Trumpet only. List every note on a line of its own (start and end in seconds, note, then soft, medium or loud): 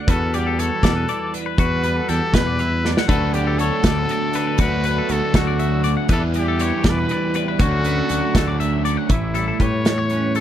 0.10 0.37 A4 medium
0.35 0.61 G4 medium
0.60 1.32 A4 medium
1.59 2.11 B4 loud
2.09 2.36 A4 medium
2.34 2.90 B4 loud
3.08 3.35 A4 medium
3.33 3.60 G4 medium
3.59 4.59 A4 medium
4.61 5.14 B4 medium
5.12 5.37 A4 medium
5.36 5.91 F#4 medium
6.12 6.23 A4 medium
6.38 6.91 G4 medium
6.90 7.35 B4 medium
7.60 8.56 F#4 loud
9.12 9.63 E4 medium
9.62 10.38 C#5 medium
10.36 10.40 A4 medium